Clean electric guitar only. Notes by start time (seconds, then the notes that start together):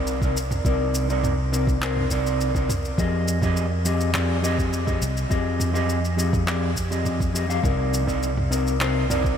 Already playing: C3 C4 D#4 A#4 D5
0.22 C3 C4 D#4 A#4 D5
0.65 C3 C4 D#4 A#4 D5
1.09 C3 C4 D#4 A#4 D5
1.52 C3 C4 D#4 A#4 D5
1.81 C3 C4 D#4 A#4 C5
2.10 C3 C4 D#4 A#4 D5
2.55 C3 C4 D#4 A#4 D5
2.97 F3 C4 G4 G#4 D#5
3.41 F3 C4 G4 G#4 D#5
3.85 F3 C4 G4 G#4 D#5
4.13 F3 C4 G4 G#4 D5
4.42 F3 C4 G4 G#4 D#5
4.86 F3 C4 G4 G#4 D#5
5.30 F3 C4 G4 G#4 D#5
5.73 F3 C4 G4 G#4 D#5
6.16 F3 C4 G4 G#4 D#5
6.46 F3 C4 G4 G#4 D5
6.90 F3 C4 G4 G#4 D#5
7.34 F3 C4 G4 G#4 D#5
7.48 F3 C4 G4 G#4 F5
7.62 C3 C4 D#4 A#4 D5
8.06 C3 C4 D#4 A#4 D5
8.50 C3 C4 D#4 A#4 D5
8.80 C3 C4 D#4 A#4 C5
9.09 C3 C4 D#4 A#4 D5